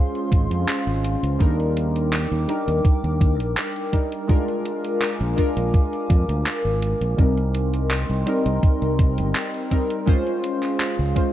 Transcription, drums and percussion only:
0.15 closed hi-hat soft
0.32 kick loud
0.32 closed hi-hat medium
0.51 closed hi-hat soft
0.68 clap loud
0.68 closed hi-hat medium
0.87 closed hi-hat soft
1.04 closed hi-hat medium
1.24 closed hi-hat medium
1.40 kick loud
1.40 closed hi-hat soft
1.60 closed hi-hat soft
1.77 closed hi-hat medium
1.96 closed hi-hat soft
2.13 clap loud
2.13 closed hi-hat medium
2.32 closed hi-hat soft
2.49 closed hi-hat medium
2.68 closed hi-hat soft
2.85 kick loud
2.85 closed hi-hat medium
3.04 closed hi-hat soft
3.21 kick loud
3.21 closed hi-hat medium
3.40 closed hi-hat soft
3.57 clap loud
3.57 closed hi-hat medium
3.76 closed hi-hat soft
3.93 kick medium
3.93 closed hi-hat medium
4.12 closed hi-hat soft
4.29 kick loud
4.29 closed hi-hat medium
4.48 closed hi-hat soft
4.66 closed hi-hat medium
4.85 closed hi-hat soft
5.02 clap loud
5.02 closed hi-hat medium
5.21 closed hi-hat soft
5.38 kick medium
5.38 closed hi-hat medium
5.57 closed hi-hat soft
5.74 kick loud
5.74 closed hi-hat medium
5.93 closed hi-hat soft
6.10 kick loud
6.10 closed hi-hat medium
6.29 closed hi-hat soft
6.46 clap loud
6.46 closed hi-hat medium
6.65 closed hi-hat soft
6.82 closed hi-hat medium
7.02 closed hi-hat soft
7.18 kick loud
7.18 closed hi-hat soft
7.38 closed hi-hat soft
7.55 closed hi-hat medium
7.74 closed hi-hat soft
7.91 clap loud
7.91 closed hi-hat medium
8.10 closed hi-hat soft
8.27 closed hi-hat medium
8.46 closed hi-hat soft
8.63 kick loud
8.63 closed hi-hat medium
8.82 closed hi-hat soft
8.99 kick medium
8.99 closed hi-hat medium
9.18 closed hi-hat medium
9.35 clap loud
9.35 closed hi-hat medium
9.54 closed hi-hat soft
9.71 kick medium
9.71 closed hi-hat medium
9.90 closed hi-hat medium
10.08 kick loud
10.08 closed hi-hat medium
10.27 closed hi-hat soft
10.44 closed hi-hat medium
10.63 clap soft
10.63 closed hi-hat soft
10.80 clap loud
10.80 closed hi-hat medium
10.99 closed hi-hat soft
11.16 kick medium
11.16 closed hi-hat medium

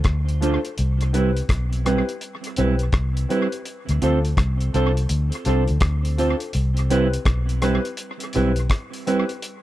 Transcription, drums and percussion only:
0.04 kick loud
0.04 cross-stick loud
0.04 closed hi-hat medium
0.29 closed hi-hat soft
0.42 closed hi-hat medium
0.65 closed hi-hat soft
0.78 closed hi-hat medium
1.01 closed hi-hat medium
1.14 closed hi-hat medium
1.37 closed hi-hat medium
1.49 kick loud
1.49 cross-stick loud
1.49 closed hi-hat medium
1.73 closed hi-hat soft
1.86 cross-stick medium
1.86 closed hi-hat medium
2.09 closed hi-hat medium
2.21 closed hi-hat medium
2.44 closed hi-hat medium
2.56 closed hi-hat medium
2.79 closed hi-hat soft
2.92 kick loud
2.92 cross-stick loud
2.92 closed hi-hat medium
3.17 closed hi-hat medium
3.30 closed hi-hat medium
3.52 closed hi-hat soft
3.65 closed hi-hat medium
3.89 closed hi-hat medium
4.02 closed hi-hat medium
4.25 closed hi-hat medium
4.37 kick loud
4.37 cross-stick loud
4.37 closed hi-hat medium
4.61 closed hi-hat soft
4.74 closed hi-hat medium
4.97 closed hi-hat medium
5.09 closed hi-hat medium
5.32 closed hi-hat medium
5.45 closed hi-hat medium
5.68 closed hi-hat soft
5.80 kick loud
5.80 cross-stick loud
5.80 closed hi-hat medium
6.05 closed hi-hat medium
6.18 closed hi-hat medium
6.40 closed hi-hat soft
6.53 closed hi-hat medium
6.77 closed hi-hat medium
6.91 closed hi-hat medium
7.13 closed hi-hat medium
7.25 kick loud
7.25 cross-stick loud
7.25 closed hi-hat medium
7.49 closed hi-hat soft
7.62 cross-stick medium
7.62 closed hi-hat medium
7.85 closed hi-hat soft
7.97 closed hi-hat medium
8.20 closed hi-hat medium
8.33 closed hi-hat medium
8.56 closed hi-hat soft
8.70 kick loud
8.70 cross-stick loud
8.70 closed hi-hat medium
8.93 closed hi-hat medium
9.07 closed hi-hat medium
9.29 closed hi-hat soft
9.42 closed hi-hat medium

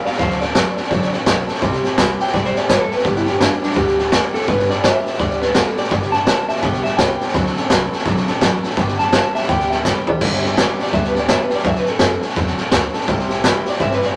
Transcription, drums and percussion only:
0.06 snare soft
0.12 snare soft
0.19 kick loud
0.19 snare soft
0.30 snare soft
0.41 snare soft
0.55 kick medium
0.55 snare loud
0.55 hi-hat pedal medium
0.77 snare soft
0.83 snare soft
0.91 kick loud
0.91 snare soft
1.02 snare soft
1.12 snare soft
1.26 kick medium
1.26 snare loud
1.26 hi-hat pedal medium
1.48 snare soft
1.55 snare soft
1.62 kick loud
1.62 snare soft
1.72 snare soft
1.84 snare soft
1.98 kick medium
1.98 snare loud
1.98 hi-hat pedal medium
2.20 snare soft
2.27 snare soft
2.34 kick loud
2.34 snare soft
2.44 snare soft
2.56 snare soft
2.69 kick medium
2.69 snare loud
2.69 hi-hat pedal medium
2.91 snare soft
2.98 snare soft
3.04 kick loud
3.04 snare soft
3.16 snare soft
3.26 snare soft
3.41 kick medium
3.41 snare loud
3.41 hi-hat pedal medium
3.63 snare soft
3.70 snare soft
3.76 kick loud
3.76 snare soft
3.87 snare soft
3.99 snare soft
4.12 kick medium
4.12 snare loud
4.12 hi-hat pedal medium
4.34 snare soft
4.41 snare soft
4.48 kick loud
4.48 snare soft
4.59 snare soft
4.70 snare soft
4.84 kick medium
4.84 snare loud
4.84 hi-hat pedal medium
5.06 snare soft
5.13 snare soft
5.19 kick loud
5.19 snare soft
5.30 snare soft
5.42 snare soft
5.55 kick medium
5.55 snare loud
5.55 hi-hat pedal medium
5.77 snare soft
5.84 snare soft
5.91 kick loud
5.91 snare soft
6.02 snare soft
6.13 snare soft
6.27 kick medium
6.27 snare loud
6.27 hi-hat pedal medium
6.48 snare soft
6.56 snare soft
6.62 kick loud
6.62 snare soft
6.73 snare soft
6.85 snare soft
6.99 kick medium
6.99 snare loud
6.99 hi-hat pedal medium
7.21 snare soft
7.28 snare soft
7.34 kick loud
7.34 snare soft
7.46 snare soft
7.56 snare soft
7.70 kick medium
7.70 snare loud
7.70 hi-hat pedal medium
7.92 snare soft
7.99 snare soft
8.06 kick loud
8.06 snare soft
8.17 snare soft
8.27 snare soft
8.41 kick medium
8.41 snare loud
8.41 hi-hat pedal medium
8.63 snare soft
8.70 snare soft
8.77 kick loud
8.77 snare soft
8.88 snare soft
8.99 snare soft
9.13 kick medium
9.13 snare loud
9.13 hi-hat pedal medium
9.35 snare soft
9.42 snare soft
9.49 kick loud
9.49 snare soft
9.60 snare soft
9.71 snare soft
9.85 kick medium
9.85 snare medium
9.85 hi-hat pedal medium
10.07 floor tom medium
10.21 kick loud
10.21 snare soft
10.21 crash loud
10.33 snare soft
10.44 snare soft
10.57 kick medium
10.57 snare loud
10.57 hi-hat pedal medium
10.80 snare soft
10.86 snare soft
10.93 kick loud
10.93 snare soft
11.04 snare soft
11.15 snare soft
11.29 kick medium
11.29 snare loud
11.29 hi-hat pedal medium
11.50 snare soft
11.57 snare soft
11.64 kick loud
11.64 snare soft
11.75 snare soft
11.86 snare soft
11.99 kick medium
11.99 snare loud
11.99 hi-hat pedal medium
12.22 snare soft
12.29 snare soft
12.36 kick loud
12.36 snare soft
12.47 snare soft
12.57 snare soft
12.72 kick medium
12.72 snare loud
12.72 hi-hat pedal medium
12.94 snare soft
13.00 snare soft
13.07 kick loud
13.07 snare soft
13.19 snare soft
13.30 snare soft
13.44 kick medium
13.44 snare loud
13.44 hi-hat pedal medium
13.65 snare soft
13.73 snare soft
13.79 kick loud
13.79 snare soft
13.92 snare soft
14.02 snare soft

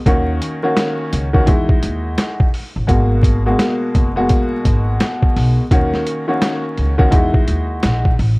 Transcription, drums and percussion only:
0.06 kick loud
0.06 closed hi-hat medium
0.42 closed hi-hat medium
0.77 snare loud
0.77 closed hi-hat medium
1.13 closed hi-hat medium
1.34 kick medium
1.47 kick loud
1.47 closed hi-hat medium
1.69 kick loud
1.83 closed hi-hat medium
2.18 snare loud
2.18 closed hi-hat medium
2.40 kick medium
2.54 open hi-hat medium
2.89 kick loud
2.89 closed hi-hat medium
3.23 kick medium
3.23 closed hi-hat medium
3.59 snare loud
3.59 closed hi-hat medium
3.95 kick loud
3.95 closed hi-hat medium
4.30 kick loud
4.30 closed hi-hat medium
4.65 kick medium
4.65 closed hi-hat medium
5.00 snare loud
5.00 closed hi-hat medium
5.23 kick medium
5.36 open hi-hat medium
5.71 kick loud
5.71 closed hi-hat medium
5.94 snare soft
6.07 closed hi-hat medium
6.42 snare loud
6.42 closed hi-hat medium
6.77 closed hi-hat medium
6.99 kick medium
7.12 kick loud
7.12 closed hi-hat medium
7.34 kick loud
7.47 closed hi-hat medium
7.83 snare loud
7.83 closed hi-hat medium
8.05 kick medium
8.19 open hi-hat medium

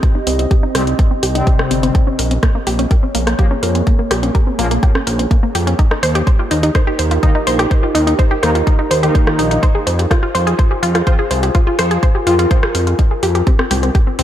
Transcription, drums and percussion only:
0.03 kick loud
0.03 closed hi-hat soft
0.27 open hi-hat loud
0.39 closed hi-hat soft
0.51 kick loud
0.51 closed hi-hat soft
0.75 cross-stick soft
0.75 open hi-hat medium
0.87 closed hi-hat soft
0.99 kick loud
0.99 closed hi-hat soft
1.23 open hi-hat loud
1.35 closed hi-hat soft
1.47 kick loud
1.47 closed hi-hat soft
1.59 cross-stick soft
1.71 open hi-hat medium
1.83 closed hi-hat soft
1.95 kick loud
1.95 closed hi-hat soft
2.19 open hi-hat loud
2.31 closed hi-hat soft
2.43 kick loud
2.43 cross-stick soft
2.43 closed hi-hat soft
2.67 open hi-hat medium
2.79 closed hi-hat soft
2.91 kick loud
2.91 closed hi-hat soft
3.15 open hi-hat loud
3.27 cross-stick soft
3.27 closed hi-hat soft
3.39 kick loud
3.39 closed hi-hat soft
3.63 open hi-hat medium
3.75 closed hi-hat soft
3.87 kick loud
3.87 closed hi-hat soft
4.11 cross-stick soft
4.11 open hi-hat loud
4.23 closed hi-hat soft
4.35 kick loud
4.35 closed hi-hat soft
4.59 open hi-hat medium
4.71 closed hi-hat soft
4.83 kick loud
4.83 closed hi-hat soft
4.95 cross-stick soft
5.07 open hi-hat loud
5.19 closed hi-hat soft
5.31 kick loud
5.31 closed hi-hat soft
5.55 open hi-hat medium
5.67 closed hi-hat soft
5.79 kick loud
5.79 closed hi-hat soft
5.91 cross-stick soft
6.03 open hi-hat loud
6.15 closed hi-hat soft
6.27 kick loud
6.27 closed hi-hat soft
6.51 open hi-hat medium
6.63 closed hi-hat soft
6.75 kick loud
6.75 cross-stick medium
6.75 closed hi-hat soft
6.99 open hi-hat loud
7.11 closed hi-hat soft
7.23 kick loud
7.23 closed hi-hat soft
7.47 open hi-hat medium
7.59 cross-stick medium
7.59 closed hi-hat soft
7.71 kick loud
7.71 closed hi-hat soft
7.95 open hi-hat loud
8.07 closed hi-hat soft
8.19 kick loud
8.19 closed hi-hat soft
8.43 cross-stick medium
8.43 open hi-hat medium
8.55 closed hi-hat soft
8.67 kick loud
8.67 closed hi-hat soft
8.91 open hi-hat loud
9.03 closed hi-hat soft
9.15 kick loud
9.15 closed hi-hat soft
9.27 cross-stick medium
9.39 open hi-hat medium
9.51 closed hi-hat soft
9.63 kick loud
9.63 closed hi-hat soft
9.87 open hi-hat loud
9.99 closed hi-hat soft
10.11 kick loud
10.11 cross-stick medium
10.11 closed hi-hat soft
10.35 open hi-hat medium
10.47 closed hi-hat soft
10.59 kick loud
10.59 closed hi-hat soft
10.83 open hi-hat medium
10.95 cross-stick medium
10.95 closed hi-hat soft
11.07 kick loud
11.07 closed hi-hat soft
11.31 open hi-hat medium
11.43 closed hi-hat soft
11.55 kick loud
11.55 closed hi-hat soft
11.79 cross-stick medium
11.79 open hi-hat loud
11.91 closed hi-hat soft
12.03 kick loud
12.03 closed hi-hat soft
12.27 open hi-hat medium
12.39 closed hi-hat soft
12.51 kick loud
12.51 closed hi-hat soft
12.63 cross-stick soft
12.75 open hi-hat loud
12.87 closed hi-hat soft
12.99 kick loud
12.99 closed hi-hat soft
13.23 open hi-hat medium
13.35 closed hi-hat soft
13.47 kick loud
13.47 closed hi-hat soft
13.59 cross-stick soft
13.71 open hi-hat loud
13.71 low conga medium
13.83 closed hi-hat soft
13.95 kick loud
13.95 closed hi-hat soft
14.19 open hi-hat medium

